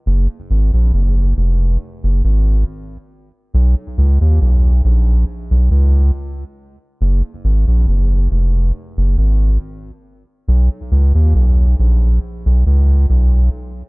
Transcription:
\new Staff \with { instrumentName = "Sub bass" } { \clef bass \time 4/4 \key fis \major \tempo 4 = 69 fis,,16 r16 gis,,16 ais,,16 fis,,8 eis,,8 r16 fis,,16 gis,,8 r4 | b,,16 r16 cis,16 dis,16 b,,8 ais,,8 r16 b,,16 cis,8 r4 | fis,,16 r16 gis,,16 ais,,16 fis,,8 eis,,8 r16 fis,,16 gis,,8 r4 | b,,16 r16 cis,16 dis,16 b,,8 ais,,8 r16 b,,16 cis,8 b,,8 r8 | }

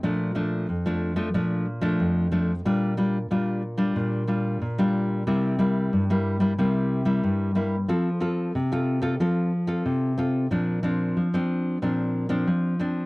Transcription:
\new Staff \with { instrumentName = "Nylon-string guitar" } { \time 4/4 \key bes \major \tempo 4 = 92 << { <f a d'>8 <f a d'>8 r16 <f a d'>8 <f a d'>16 <f a d'>8 r16 <f a d'>8. <f a d'>16 r16 | <g d' f'>8 <g d' f'>16 r16 <g d' f'>8 r16 <g d' f'>8. <g d' f'>8 r16 <g d' f'>8. | <g bes e'>8 <g bes e'>8. <g bes e'>8 <g bes e'>16 <g bes e'>8. <g bes e'>8. <g bes e'>16 r16 | <c' f' a'>16 r16 <c' f' a'>8 r16 <c' f' a'>8 <c' f' a'>16 <c' f' a'>8 r16 <c' f' a'>8. <c' f' a'>8 |
<f c' d'>8 <f c' d'>8. <f c' d'>8. <f c' d'>8. <f c' d'>8. <f c' d'>8 | } \\ { bes,4 f,4 bes,4 f,4 | bes,4 bes,4 bes,4 bes,4 | c4 g,4 c4 g,4 | f4 c4 f4 c4 |
bes,4 f4 bes,4 f4 | } >> }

